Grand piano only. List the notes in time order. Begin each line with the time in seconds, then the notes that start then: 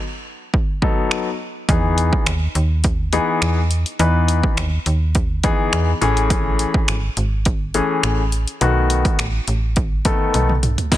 0.82 F#3 B3 D#4 A4
1.69 E3 B3 D#4 G#4
3.13 E3 B3 D#4 G#4
3.99 E3 B3 D#4 B4
5.44 E3 B3 D#4 G#4
6.01 E3 A3 C#4 G#4
7.74 E3 A3 C#4 G#4
8.61 D#3 A3 B3 F#4
10.05 D#3 A3 B3 A4
10.92 E3 B3 D#4 G#4